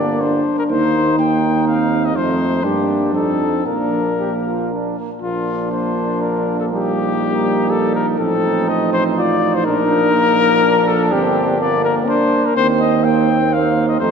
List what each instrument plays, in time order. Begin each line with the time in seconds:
Already playing: tuba G1, french horn A#3, trombone A#3, flugelhorn D4, trumpet D5
0.22 french horn D4, trumpet C5
0.59 trumpet A#4
0.70 tuba D#2, trombone A#3, french horn D#4, flugelhorn D#4, trumpet C5
1.19 trombone A#3, flugelhorn D#4, trumpet G5
1.66 french horn C4, trumpet F5
2.05 trumpet D#5
2.14 tuba F2, trombone A3, flugelhorn D#4, trumpet C5
2.63 tuba G2, trombone A#3, flugelhorn D4, french horn D4, trumpet G4
3.13 tuba F2, trombone C4, flugelhorn D#4, trumpet A4
3.65 tuba A#1, trombone A#3, french horn D4, flugelhorn D4, trumpet A#4
4.19 flugelhorn G4
4.47 flugelhorn F4
4.73 flugelhorn D4
4.99 flugelhorn A#3
5.22 tuba A#1, french horn A#3, flugelhorn D4, trumpet F4
5.71 trombone A#3, trumpet C5
6.21 trumpet A#4
6.60 trumpet A4
6.71 french horn G3, flugelhorn D#4, trumpet G4
7.70 trumpet A4
7.95 trumpet A#4
8.19 tuba A1, french horn F3, trombone C4, trumpet A4
8.69 trumpet D#5
8.93 trumpet C5
9.18 trombone F4, trumpet D5
9.54 trumpet C5
9.65 tuba A#1, trombone D4, trumpet A#4
10.14 trombone A#3
10.63 flugelhorn D4
10.88 trumpet A4
11.11 tuba G1, french horn A#3, trombone C4, trumpet G4
11.61 trombone A#3, trumpet D5
11.85 trumpet A#4
12.07 trombone D4, trumpet C5
12.45 trumpet A#4
12.57 tuba D#2, flugelhorn C4, trombone C4, trumpet C5
12.80 trumpet D#5
13.04 trombone A#3, trumpet G5
13.53 trombone A#3, trumpet F5
13.89 trumpet D#5
14.00 tuba F2, trombone A3, french horn A3, flugelhorn D#4, trumpet C5